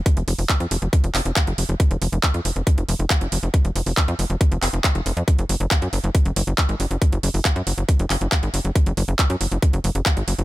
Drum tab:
HH |xxooxxoxxxoxxxox|xxoxxxoxxxoxxxox|xxooxxoxxxoxxxox|xxoxxxoxxxoxxxox|
CP |----x-----x-x---|----x-------x---|----x-----x-x---|----x-------x---|
BD |o---o---o---o---|o---o---o---o---|o---o---o---o---|o---o---o---o---|

HH |xxooxxoxxxoxxxox|xxoxxxoxxxoxxxox|
CP |----x-----x-x---|----x-------x---|
BD |o---o---o---o---|o---o---o---o---|